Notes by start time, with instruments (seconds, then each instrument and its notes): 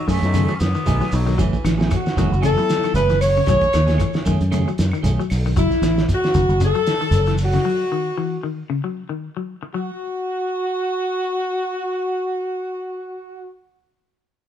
0.08 fingered electric bass F#2, clean electric guitar D#3 A3 C#4 G#4, baritone saxophone A3, kick, open hi-hat, shekere
0.22 fingered electric bass F#2, reed electric piano F#3 B3 D#4, closed hi-hat, shekere
0.34 clean electric guitar C#3 D#3 A3 C#4 G#4, closed hi-hat, shekere
0.48 clean electric guitar F#3, shekere
0.55 baritone saxophone C#4
0.59 fingered electric bass F#2, baritone saxophone B3, snare, closed hi-hat, shekere
0.75 clean electric guitar D#3, shekere
0.86 fingered electric bass B1, clean electric guitar D#3 A3 C#4 G#4, reed electric piano F#3 B3 D#4, kick, closed hi-hat, shekere
1.01 clean electric guitar F#3, snare, shekere
1.12 fingered electric bass B1, reed electric piano F#3 B3 D#4, baritone saxophone F#3, open hi-hat, shekere
1.27 clean electric guitar D#3, snare, shekere
1.38 fingered electric bass F#1, clean electric guitar E3 F#3 A3 C#4, baritone saxophone E3, muted clean electric guitar stroke, kick, snare, closed hi-hat, shekere
1.53 kick, shekere
1.64 fingered electric bass A1, clean electric guitar D#3, snare, closed hi-hat, claves, shekere
1.78 reed electric piano F#3 B3 E4, clean electric guitar A3 C#4 G#4, snare, shekere
1.91 clean electric guitar E3, kick, snare, closed hi-hat, claves, shekere
1.96 horn section F#4
2.06 snare, shekere
2.16 fingered electric bass F#1, clean electric guitar D#3 E3 A3 C#4 G#4, reed electric piano F#3 B3 F#4, kick, snare, closed hi-hat, shekere
2.32 fingered electric bass F#1, shekere
2.41 clean electric guitar C#3 E3 A3 C#4 G#4, closed hi-hat, claves, shekere
2.45 horn section A4
2.56 reed electric piano F#3 B3 E4, clean electric guitar F#3, shekere
2.69 snare, closed hi-hat, shekere
2.83 clean electric guitar D#3, snare, closed hi-hat, claves, shekere
2.94 fingered electric bass F#1, clean electric guitar E3 A3 C#4 G#4, horn section B4, closed hi-hat, shekere
3.09 clean electric guitar E3, snare, closed hi-hat, shekere
3.21 horn section C#5, open hi-hat, claves, shekere
3.37 clean electric guitar C#3, shekere
3.46 fingered electric bass B1, clean electric guitar D#3 F#3 A3 C#4 G#4, kick, closed hi-hat, shekere
3.61 kick, closed hi-hat, shekere
3.73 fingered electric bass D#2, clean electric guitar D#3, snare, closed hi-hat, claves, shekere
3.87 clean electric guitar A3 C#4 G#4, snare, closed hi-hat, shekere
3.98 clean electric guitar E3, kick, closed hi-hat, claves, shekere
4.13 snare, shekere
4.25 fingered electric bass F#2, clean electric guitar D#3 A3 C#4 G#4, kick, closed hi-hat, shekere
4.41 fingered electric bass F#2, closed hi-hat, shekere
4.51 clean electric guitar C#3 D#3 A3 C#4 G#4, closed hi-hat, claves, shekere
4.68 clean electric guitar F#3, shekere
4.78 fingered electric bass F#2, snare, closed hi-hat, shekere
4.92 clean electric guitar D#3, claves, shekere
5.02 fingered electric bass B1, clean electric guitar D#3 A3 C#4 G#4, closed hi-hat, shekere
5.20 clean electric guitar F#3, shekere
5.30 fingered electric bass B1, open hi-hat, claves, shekere
5.46 clean electric guitar D#3, shekere
5.56 fingered electric bass F#1, clean electric guitar F#3, horn section E4, kick, closed hi-hat, shekere
5.71 kick, snare, shekere
5.82 fingered electric bass A1, clean electric guitar D#3, snare, closed hi-hat, shekere
5.98 snare, shekere
6.09 kick, snare, closed hi-hat, shekere
6.14 horn section F#4
6.23 snare, shekere
6.34 fingered electric bass F#1, clean electric guitar D#3, kick, closed hi-hat, shekere
6.49 fingered electric bass F#1, shekere
6.60 clean electric guitar C#3, closed hi-hat, shekere
6.65 horn section A4
6.75 clean electric guitar F#3, shekere
6.87 snare, closed hi-hat, shekere
7.01 clean electric guitar D#3, closed hi-hat, shekere
7.11 fingered electric bass F#1, closed hi-hat, shekere
7.26 clean electric guitar E3, snare, closed hi-hat, shekere
7.38 open hi-hat, shekere
7.44 horn section F#4
7.52 clean electric guitar C#3, snare, shekere
7.65 clean electric guitar F#3
7.92 clean electric guitar D#3
8.18 clean electric guitar E3
8.43 clean electric guitar D#3
8.70 clean electric guitar C#3
8.84 clean electric guitar F#3
9.09 clean electric guitar D#3
9.37 clean electric guitar F#3
9.63 muted clean electric guitar stroke
9.74 clean electric guitar F#3, horn section F#4